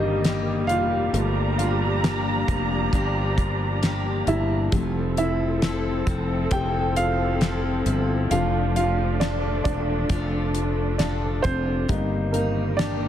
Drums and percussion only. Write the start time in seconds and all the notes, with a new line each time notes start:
0.24 snare, closed hi-hat
0.69 closed hi-hat
1.14 closed hi-hat
1.59 closed hi-hat
2.04 snare, closed hi-hat
2.48 kick, closed hi-hat
2.93 kick, closed hi-hat
3.38 kick, closed hi-hat
3.83 snare, closed hi-hat
4.27 closed hi-hat
4.72 kick, closed hi-hat
5.17 closed hi-hat
5.62 snare, closed hi-hat
6.07 kick, closed hi-hat
6.51 kick, closed hi-hat
6.96 closed hi-hat
7.41 snare, closed hi-hat
7.86 closed hi-hat
8.31 closed hi-hat
8.76 closed hi-hat
9.21 snare, closed hi-hat
9.65 kick, closed hi-hat
10.09 kick, closed hi-hat
10.55 closed hi-hat
10.99 snare, closed hi-hat
11.44 kick, closed hi-hat
11.89 kick, closed hi-hat
12.34 closed hi-hat
12.79 snare, closed hi-hat